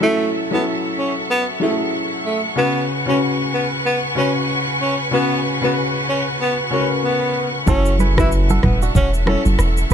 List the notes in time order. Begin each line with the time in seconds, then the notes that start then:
Already playing: E4 A4 E5 F#5 C#6
0.00 F#3 A3 C#4 E4 A4
0.51 F#3 B3 C#4 E4 A4
0.98 C#4
1.30 B3
1.60 F#3 A3 C#4 E4 G#4
1.69 A4
2.26 A3
2.56 C#3 B3 C#4 F#4 B4 G#5
3.06 C#3 C#4 F#4 B4
3.54 B3
3.85 B3
4.15 C#3 C#4 F#4 B4
4.81 C#4
5.11 C#3 B3 C#4 F#4 B4
5.61 C#3 B3 C#4 F#4 B4
6.09 C#4
6.41 B3
6.70 C#3 C#4 F#4 A#4
6.80 B4
7.05 B3
7.66 F#1 F#3 C#4 E4 F#4 A4 E5, kick, low conga, shaker
7.86 shaker
7.99 G#4 B4, high conga, shaker
8.17 F#3 C#4 E4 B4, kick, cross-stick, shaker
8.32 shaker
8.50 F#4 A4, high conga, shaker
8.63 E1 B3, kick, cross-stick, mid tom, high conga
8.82 D4 F#4, shaker
8.95 E1 C#4 F#4, kick, low conga, shaker
9.14 shaker
9.26 F#3 C#4 E4 F#4 A4, cross-stick, high conga
9.45 F#1, high conga, shaker
9.59 E1, cross-stick, shaker
9.77 shaker
9.90 shaker